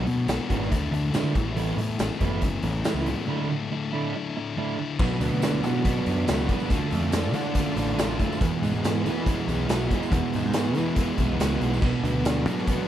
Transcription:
Already playing: B2 F#3
0.05 B2 B3 D4 F#4, muted overdriven electric guitar stroke, closed hi-hat
0.27 B1 F#3 B3 D4 F#4, muted overdriven electric guitar stroke, snare, closed hi-hat, tambourine
0.48 G#1 F#3 B3 D4 F#4, kick, closed hi-hat
0.63 snare
0.69 D2 D3 A3 D4 E4, muted overdriven electric guitar stroke, kick, closed hi-hat
0.91 D2, muted overdriven electric guitar stroke, closed hi-hat
1.12 D3 A3 D4 E4, snare, closed hi-hat, tambourine
1.23 D3
1.34 A1 A2 E3 A3 B3 E4, muted overdriven electric guitar stroke, kick, closed hi-hat
1.55 A2 E3 A3 B3 E4, closed hi-hat
1.77 A2 A3 B3 E4, muted overdriven electric guitar stroke, closed hi-hat
1.98 A1 E3 A3 B3 E4, muted overdriven electric guitar stroke, snare, closed hi-hat, tambourine
2.19 F#1 E3 A3 B3 E4, kick, closed hi-hat
2.41 muted overdriven electric guitar stroke, kick, closed hi-hat
2.62 A1, muted overdriven electric guitar stroke, closed hi-hat
2.84 A2 E3 A3 B3 E4, snare, closed hi-hat, tambourine
2.94 C#2
3.05 A3 B3 E4, muted overdriven electric guitar stroke, closed hi-hat
3.26 D3 A3 D4 E4
3.48 A3 D4 E4, muted overdriven electric guitar stroke
3.70 D3 A3 D4 E4, muted overdriven electric guitar stroke
3.91 D3 A3 D4 E4
4.15 muted overdriven electric guitar stroke
4.37 muted overdriven electric guitar stroke
4.56 D3 A3 D4 E4
4.77 A3 D4 E4, muted overdriven electric guitar stroke
4.98 B1 B2 F#3 B3 D4 F#4, kick, crash
5.02 F#4 B4 D5 B5
5.21 D2 B3, closed hi-hat, tambourine
5.32 D2
5.40 B2 F#3 B3 D4 F#4, snare, closed hi-hat, tambourine
5.62 B2 F#3 B3 D4 F#4, closed hi-hat, tambourine
5.84 F#3 B3 D4 F#4, kick, closed hi-hat, tambourine
5.96 tambourine
6.06 F#2 D4, closed hi-hat, tambourine
6.18 tambourine
6.27 C#2 F#3 B3 D4 F#4, snare, closed hi-hat, tambourine
6.48 B3 D4 F#4, kick, closed hi-hat, tambourine
6.60 tambourine
6.68 D2 D3 A3 D4 F4 A4 A5, kick, closed hi-hat
6.91 F2 A3, closed hi-hat, tambourine
7.02 F2
7.12 D3 A3 D4 F4, snare, closed hi-hat, tambourine
7.33 D3 A3 D4 F4, closed hi-hat, tambourine
7.44 tambourine
7.54 D3 A3 D4 F4, kick, closed hi-hat, tambourine
7.66 tambourine
7.76 A1 D4, closed hi-hat, tambourine
7.97 A1 D3 A3 D4 F4, snare, closed hi-hat, tambourine
8.19 A3 D4 F4, kick, closed hi-hat, tambourine
8.32 tambourine
8.40 E2 B2 E3 G#3 B3 E4 F#4 B4 E5 G#5, kick, closed hi-hat
8.62 G#2 G#3, closed hi-hat, tambourine
8.74 G#2
8.83 E2 B2 E3 G#3 B3 E4, snare, closed hi-hat, tambourine
9.04 E3 G#3 B3 E4, closed hi-hat, tambourine
9.17 tambourine
9.25 E3 G#3 B3 E4, kick, closed hi-hat
9.39 tambourine
9.47 B1 B3, closed hi-hat, tambourine
9.60 tambourine
9.67 B1 E3 G#3 B3 E4, snare, closed hi-hat, tambourine
9.71 F#4, tambourine
9.89 E3 G#3 B3 E4, kick, closed hi-hat
10.03 tambourine
10.09 E2 B2 E3 G#3 B3 E4, kick, closed hi-hat
10.14 E2
10.26 tambourine
10.33 G#2 G#3, closed hi-hat, tambourine
10.46 G#2, tambourine
10.52 E2 B2 E3 G#3 B3 E4, snare, closed hi-hat, tambourine
10.57 tambourine
10.67 tambourine
10.74 E3 G#3 B3 E4, closed hi-hat, tambourine
10.96 E3 G#3 B3 E4, kick, closed hi-hat, tambourine
11.18 B1 B3, kick, closed hi-hat, tambourine
11.31 tambourine
11.37 C#2 E3 G#3 B3 E4 F#4, snare, closed hi-hat, tambourine
11.41 tambourine
11.59 B1 E3 G#3 B3 E4, closed hi-hat
11.74 tambourine
11.80 B1 B2 F#3 B3 D4 F#4 D5 B5, kick, crash
12.03 D2 B3, closed hi-hat, tambourine
12.14 D2
12.23 B2 F#3 B3 D4 F#4, snare, closed hi-hat, tambourine
12.44 B2 F#3 B3 D4 F#4, closed hi-hat, tambourine
12.58 snare, tambourine
12.67 F#3 B3 D4 F#4, kick, closed hi-hat, tambourine
12.80 tambourine

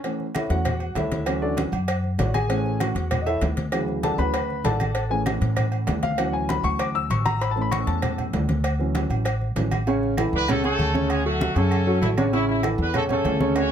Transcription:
0.04 E3 A3 C#4, cowbell, high conga, low agogo
0.20 high conga
0.35 E4 A4 C#5 E5, cowbell, high conga, low agogo, claves
0.50 E2 E3 A3 C#4 F#4 F#5, cowbell, high conga
0.65 cowbell, high conga, low conga, low agogo, claves
0.80 high conga, low agogo
0.95 D2 E4 A4 C#5 E5, cowbell, high conga, low timbale, low agogo
1.12 cowbell, high conga
1.26 E3 F#3 C#4, cowbell, low agogo, claves
1.42 D4 F#4 A4 D5, high conga
1.57 cowbell, high conga, low agogo
1.72 F#2, high conga, low agogo
1.88 cowbell, high conga, low agogo, claves
2.04 high conga
2.18 A1 F#4 C#5 D5 F#5, cowbell, high conga, low timbale, low agogo
2.34 G#4 G#5, high conga, low agogo, claves
2.49 E3 A3 C#4, cowbell, high conga, low agogo
2.66 high conga
2.80 F#4 F#5, cowbell, high conga, low agogo, claves
2.95 E2, cowbell, high conga
3.11 cowbell, high conga, low conga, low agogo, claves
3.22 D#5
3.26 E4 A4 C#5 E5, high conga, low agogo
3.41 D2, cowbell, high conga, low timbale, low agogo
3.57 cowbell, high conga
3.72 C#3 E3 F#3, cowbell, high conga, low agogo, claves
3.88 high conga
4.03 A4 D5 F#5 A5, cowbell, high conga, low agogo
4.18 D2 E3 F#3 C#4 B4 B5, high conga, low agogo
4.34 cowbell, high conga, low agogo, claves
4.50 high conga
4.64 A1 A4 D5 F#5 A5, cowbell, high conga, low timbale, low agogo
4.80 high conga, low agogo, claves
4.95 cowbell, high conga, low agogo
5.10 E3 A3 C#4 G#4 G#5, high conga
5.26 cowbell, high conga, low agogo, claves
5.41 A2, cowbell, high conga
5.56 cowbell, high conga, low conga, low agogo, claves
5.72 high conga, low agogo
5.87 D2, cowbell, high conga, low timbale, low agogo
6.03 F5, cowbell, high conga
6.18 E3 F#3 C#4 F#5, cowbell, high conga, low agogo, claves
6.33 G#5, high conga
6.49 B5, cowbell, high conga, low agogo
6.63 D2 C#6, high conga, low agogo
6.79 D6, cowbell, high conga, low agogo, claves
6.95 E6, high conga
7.10 A1 C#6, cowbell, high conga, low agogo
7.26 A#5, high conga, low agogo, claves
7.41 B5, cowbell, high conga, low agogo
7.51 A5
7.56 E3 A3 C#4, high conga
7.62 B5
7.71 C#6, cowbell, high conga, low agogo, claves
7.87 E2 A5, cowbell, high conga
8.02 cowbell, high conga, low conga, low agogo, claves
8.18 high conga, low conga, low agogo
8.33 D2, cowbell, high conga, low timbale, low agogo
8.49 cowbell, high conga
8.64 cowbell, high conga, low agogo, claves
8.79 E3 F#3 C#4, high conga
8.95 cowbell, high conga, low agogo
9.10 A1, high conga, low agogo
9.25 cowbell, high conga, low agogo, claves
9.42 high conga
9.56 A1 E3 F#3 C#4, cowbell, high conga, low timbale, low agogo
9.71 high conga, low agogo, claves
9.87 C#3 C#4 C#5, high conga, low agogo
10.03 high conga
10.17 E3 E4 A4, high conga, low agogo, claves
10.33 C#2 B3 D4 B4, high conga
10.48 C#3 A3 C#4 A4 C#5, high conga, low conga, low agogo, claves
10.64 C#3 A3 C#4 A4 C#5, high conga, low agogo
10.78 D2, high conga, low agogo
10.94 C#3 C#4 C#5, high conga
11.10 G#3 C#4 G#4, high conga, low agogo, claves
11.25 F#3 A3 F#4 A4, high conga
11.41 high conga, low agogo
11.56 F#2 C#3 A3 C#4 A4 C#5, high conga, low agogo
11.71 high conga, low agogo, claves
11.86 F#3 C#4 F#4 A4, high conga
12.02 A1 E4, high conga, low timbale, low agogo
12.17 C#3 C#4 D4 C#5, high conga, low agogo, claves
12.33 C#3 C#4 E4 C#5, high conga, low agogo
12.49 E4, high conga
12.63 E3 E4 A4, high conga, low agogo, claves
12.78 E2 B3 D4 B4, high conga
12.94 C#3 A3 C#4 A4 C#5, high conga, low conga, low agogo, claves
13.09 C#3 A3 C#4 A4 C#5, high conga, low conga, low agogo
13.24 D2, high conga, low timbale, low agogo
13.40 C#3 C#4 C#5, high conga
13.56 C#4 F#4 C#5, high timbale, low agogo, claves

